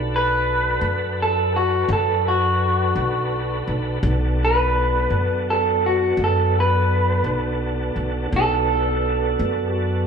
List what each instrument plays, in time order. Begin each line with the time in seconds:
Already playing: upright bass B1, tonewheel organ D4 F#4 A4 B4
0.16 clean electric guitar B4
0.81 upright bass F#2
1.22 clean electric guitar A4
1.56 clean electric guitar F#4
1.89 upright bass F#2
1.93 clean electric guitar A4
2.28 clean electric guitar F#4
2.96 upright bass B1
3.68 upright bass B1
4.02 upright bass B1, tonewheel organ B3 D4 F#4 A4
4.45 clean electric guitar B4
5.10 upright bass F#2
5.50 clean electric guitar A4
5.86 clean electric guitar F#4
6.17 upright bass F#2
6.24 clean electric guitar A4
6.60 clean electric guitar B4
7.24 upright bass B1
7.96 upright bass B1
8.29 upright bass B1, tonewheel organ B3 D4 F#4 A4
8.36 clean electric guitar A4
9.39 upright bass F#2
9.71 clean electric guitar F#4